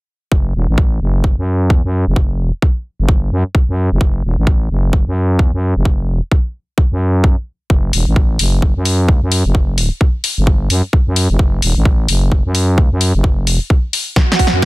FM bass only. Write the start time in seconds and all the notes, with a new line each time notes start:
0.32 F#1
0.55 E1
0.69 A1
1.01 F#1
1.38 F#2
1.84 F#2
2.07 F#1
3.00 G1
3.32 F#2
3.69 F#2
3.92 F#1
4.01 F#1
4.24 E1
4.38 A1
4.70 F#1
5.07 F#2
5.53 F#2
5.76 F#1
6.92 F#2
7.70 F#1
7.93 E1
8.07 A1
8.39 F#1
8.76 F#2
9.22 F#2
9.45 F#1
10.38 G1
10.70 F#2
11.07 F#2
11.30 F#1
11.39 F#1
11.62 E1
11.76 A1
12.08 F#1
12.45 F#2
12.92 F#2
13.15 F#1
14.53 F#2